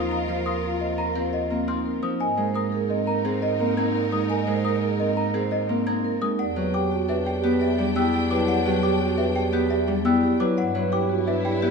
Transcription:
Already playing: D#2 F3 A#3 C4 D#4 F4 A#4 C5 D#6
0.11 F4 D#5 A#5
0.28 F3 F4 C5
0.46 F4 A#4 C6 D#6
0.63 F4
0.81 C4 F4 C5 D#5
0.98 F4 A#4 A#5
1.15 C4 F4 A#4 C5
1.33 F4 D#5 F5
1.50 A#3 C4 F4
1.68 C4 D#4 F4 C6 F6
1.85 F4 A#4
2.02 F3 D#4 C5 D#6
2.20 G#2 D#4 A#4 D#5 G#5
2.37 G#3 A#4 C5
2.54 A#4 A#5 D#6
2.72 G#4 A#4
2.90 C4 A#4 D#5
3.07 A#4 A#5
3.25 C4 G#4 A#4 C5
3.42 A#4 D#5
3.59 A#3 C4 A#4
3.77 C4 D#4 A#4 A#5 G#6
3.94 A#4
4.12 G#3 D#4 A#4 D#6
4.30 A#4 D#5 G#5
4.47 G#3 A#4 C5
4.64 A#4 A#5 D#6
4.82 G#4 A#4
5.00 C4 A#4 D#5
5.17 A#4 A#5
5.34 C4 G#4 A#4 C5
5.51 A#4 D#5
5.69 A#3 C4 A#4
5.87 C4 D#4 A#4 A#5 G#6
6.04 A#4
6.21 G#3 D#4 A#4 D#6
6.39 E2 D4 G4 D5 F#5 G5
6.56 F#3 G4 B4
6.74 G4 G5 D6
6.91 F#4 G4
7.08 D4 G4 B4 E5
7.26 G4 G5
7.44 B3 G4 B4
7.61 G4 D5 E5
7.78 G3 D4 G4
7.95 B3 E4 G4 G5 E6
8.13 G4
8.30 F#3 E4 G4 B4 D6
8.48 G4 D5 F#5
8.65 F#3 G4 B4
8.83 G4 G5 D6
9.00 F#4 G4
9.18 D4 G4 B4 E5
9.35 G4 G5
9.53 B3 G4 B4
9.70 G4 D5 E5
9.88 G3 D4 G4
10.05 B3 E4 G4 G5 E6
10.22 G4
10.40 F#3 E4 B4 D6
10.57 G2 E4 B4 D5 F#5
10.75 F#3 E4 B4
10.92 E4 G4 G5 D6
11.09 E4 F#4
11.27 D4 E4 B4 E5
11.44 E4 G4 G5
11.62 B3 E4 G4 B4

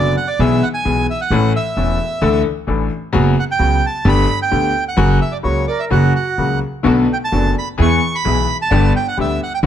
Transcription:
Already playing: F#1 F#2 D3 F#3 B3 F#4 D5
0.17 F#5
0.28 D5
0.39 B1 B2 E3 G#3 B3 G#4 E5
0.63 F#5
0.74 G#5
0.85 B1 B2 E3 G#3 B3 G#4
1.10 E5
1.21 F#5
1.30 A1 A2 E3 A3 C#4 A4
1.56 E5
1.77 E1 E2 E3 A3 C#4 A4
2.22 D2 D3 E3 A3 D4 A4
2.67 A1 A2 E3 A3 D4 A4
3.13 F#1 F#2 C#3 F#3 B3 F#4
3.40 F#5
3.51 G5
3.59 C#2 C#3 F#3 B3 F#4
3.86 A5
4.05 G1 G2 D3 A3 B3 G4 B5
4.42 G5
4.51 D2 D3 A3 B3 G4
4.88 F#5
4.97 F#1 F#2 C#3 F#3 A#3 F#4
5.21 E5
5.32 D5
5.43 C#2 C#3 F#3 A#3 F#4 C#5
5.68 A#4 D5
5.80 E5
5.90 F#1 F#2 C#3 F#3 A#3 F#4 F#5
6.16 F#5
6.38 C#2 C#3 F#3 A#3 F#4
6.83 B1 B2 D3 A3 B3 D4 F#4 A4
7.13 G5
7.24 A5
7.32 F#1 F#2 D3 A3 B3 D4 F#4 A4
7.59 B5
7.78 E2 E3 G#3 B3 E4 G#4
7.82 C#6
8.15 B5
8.25 B1 B2 E3 G#3 B3 E4 G#4
8.62 A5
8.71 G1 G2 D3 G3 B3 D4 G4
8.96 G5
9.08 F#5
9.17 D2 D3 G3 B3 D4 G4 E5
9.43 F#5
9.54 G5
9.63 D2 D3 F#3

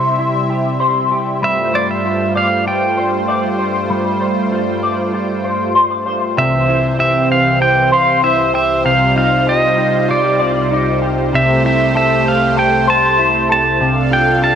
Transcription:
Already playing: C3 G3 C4 E4 G4 C5 E5
0.19 E4
0.50 G4
0.80 C5
1.12 G4
1.42 G2 G3 A3 F4 C5 E5
1.73 C5 D5
1.91 E5
2.05 F4
2.35 D5 F5
2.66 F4 G5
2.97 C5
3.28 D5
3.59 C5
3.90 G3
4.21 C5
4.52 F4
4.83 D5
5.14 F4
5.44 C5
5.75 C5
5.91 D5
6.06 C5
6.37 C2 C3 E3 C4 C5 E5
6.68 E4
6.99 G4 E5
7.32 F5
7.61 G4 G5
7.92 C5 F5
8.23 E4 E5
8.54 G4 E5
8.85 C2 C3 G3 F4 F5
9.16 D#4 F5
9.47 G4 D#5
9.78 D#4
10.09 F4 D5
10.24 G4
10.40 D5
10.71 D#4
11.02 G4
11.32 C3 A3 G4 C5 E5
11.64 E4 E5
11.95 A4 E5
12.28 F5
12.57 A4 G5
12.88 C5 A5
13.19 E4
13.49 A4 A5
13.80 C3 D4 A4 F5
14.11 F4 G5
14.42 G4 A5

